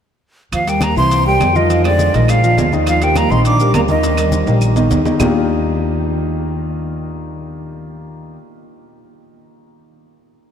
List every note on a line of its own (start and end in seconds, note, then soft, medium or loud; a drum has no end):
0.52 0.93 D#2 medium
0.52 0.70 F3 medium
0.52 0.70 F5 medium
0.52 high conga soft
0.52 high timbale medium
0.52 claves medium
0.52 maracas medium
0.66 0.91 G3 medium
0.66 0.85 G3 medium
0.66 0.91 G4 medium
0.66 0.91 A#4 medium
0.66 0.85 G5 medium
0.66 high conga soft
0.66 high timbale medium
0.66 maracas medium
0.81 0.97 A#3 medium
0.81 0.97 A#5 medium
0.81 high conga medium
0.81 high timbale medium
0.81 low timbale medium
0.81 claves medium
0.81 maracas medium
0.95 1.37 C2 medium
0.95 1.20 E3 medium
0.95 1.24 C4 medium
0.95 1.21 E4 medium
0.95 1.21 E5 medium
0.95 1.24 C6 medium
0.95 high conga soft
0.95 maracas soft
1.11 high conga soft
1.11 high timbale medium
1.11 maracas medium
1.25 1.50 G3 medium
1.25 1.58 G3 medium
1.25 1.50 G4 medium
1.25 1.50 A#4 medium
1.25 1.58 G5 medium
1.25 high conga soft
1.40 2.08 F2 medium
1.40 high conga medium
1.40 high timbale medium
1.40 low timbale medium
1.40 claves medium
1.40 maracas medium
1.55 1.85 D#3 medium
1.55 1.67 F3 medium
1.55 1.67 F4 medium
1.55 1.85 D#5 medium
1.55 1.67 F5 medium
1.55 high conga medium
1.55 maracas soft
1.70 1.82 F3 medium
1.70 1.82 F4 medium
1.70 1.82 F5 medium
1.70 high conga soft
1.70 high timbale medium
1.70 maracas medium
1.84 2.16 D3 medium
1.84 2.09 G#3 medium
1.84 2.09 G#4 medium
1.84 2.09 C5 medium
1.84 2.17 D5 medium
1.84 high conga soft
1.84 high timbale medium
1.84 claves medium
1.99 high conga medium
1.99 low timbale medium
1.99 maracas medium
2.14 2.54 A#1 medium
2.14 2.31 D#3 medium
2.14 2.38 G#3 medium
2.14 2.38 G#4 medium
2.14 2.38 A#4 medium
2.14 2.31 D#5 medium
2.14 high conga soft
2.14 high timbale medium
2.14 maracas soft
2.28 2.73 F3 medium
2.28 2.73 F5 medium
2.28 high conga soft
2.28 high timbale medium
2.28 claves medium
2.28 maracas medium
2.43 2.67 F3 medium
2.43 2.67 F4 medium
2.43 2.67 F5 medium
2.43 high conga soft
2.43 maracas medium
2.57 3.25 D#2 medium
2.57 high conga medium
2.57 high timbale medium
2.57 low timbale medium
2.57 maracas medium
2.72 2.96 D#3 medium
2.72 2.97 D#4 medium
2.72 2.97 D#5 medium
2.72 high conga medium
2.72 maracas soft
2.86 3.05 F3 medium
2.86 3.05 F5 medium
2.86 high conga soft
2.86 high timbale medium
2.86 claves medium
2.86 maracas medium
3.01 3.26 G3 medium
3.01 3.20 G3 medium
3.01 3.26 G4 medium
3.01 3.26 A#4 medium
3.01 3.19 G5 medium
3.01 high conga soft
3.01 high timbale medium
3.01 maracas medium
3.15 3.34 A#3 medium
3.15 3.32 A#5 medium
3.15 high conga medium
3.15 high timbale medium
3.15 low timbale medium
3.15 claves medium
3.15 maracas medium
3.30 3.71 A#1 medium
3.30 3.54 D#3 medium
3.30 3.46 C4 medium
3.30 3.55 D#4 medium
3.30 3.55 D#5 medium
3.30 3.45 C6 loud
3.30 high conga soft
3.30 maracas soft
3.45 3.73 D4 medium
3.45 3.73 D6 medium
3.45 high conga soft
3.45 high timbale medium
3.45 maracas medium
3.60 3.84 G3 medium
3.60 3.84 G4 medium
3.60 3.84 A#4 medium
3.60 high conga soft
3.60 maracas medium
3.74 4.41 D#2 medium
3.74 3.82 A#3 medium
3.74 3.81 A#5 medium
3.74 high conga medium
3.74 high timbale medium
3.74 low timbale medium
3.74 claves medium
3.74 maracas medium
3.88 4.00 D#3 medium
3.88 4.87 D#3 medium
3.88 4.01 D#4 medium
3.88 4.01 D#5 medium
3.88 4.87 D#5 medium
3.88 high conga medium
3.88 maracas soft
4.03 4.15 D#3 medium
4.03 4.15 D#4 medium
4.03 4.16 D#5 medium
4.03 high conga soft
4.03 high timbale medium
4.03 maracas medium
4.17 4.42 G3 medium
4.17 4.42 G4 medium
4.17 4.42 A#4 medium
4.17 high conga soft
4.17 high timbale medium
4.17 claves medium
4.17 maracas medium
4.32 high conga medium
4.32 high timbale medium
4.32 maracas medium
4.46 4.87 A#1 medium
4.46 4.71 G3 medium
4.46 4.71 G4 medium
4.46 4.71 A#4 medium
4.46 high conga soft
4.46 high timbale medium
4.46 maracas soft
4.61 high conga soft
4.61 claves medium
4.61 maracas medium
4.76 5.00 D#3 medium
4.76 5.00 D#4 medium
4.76 5.00 D#5 medium
4.76 high conga soft
4.76 low timbale medium
4.76 maracas medium
4.90 5.16 D#2 medium
4.90 high conga medium
4.90 low timbale medium
4.90 maracas medium
5.05 5.17 D#3 medium
5.05 5.17 D#4 medium
5.05 5.18 D#5 medium
5.05 high conga medium
5.05 low timbale medium
5.05 maracas soft
5.19 8.35 D#2 medium
5.19 8.35 D#3 medium
5.19 8.35 A#3 medium
5.19 8.36 D4 medium
5.19 8.35 D#4 medium
5.19 8.36 F4 medium
5.19 8.36 G4 medium
5.19 low conga medium
5.19 low timbale loud
5.19 claves medium
5.19 maracas medium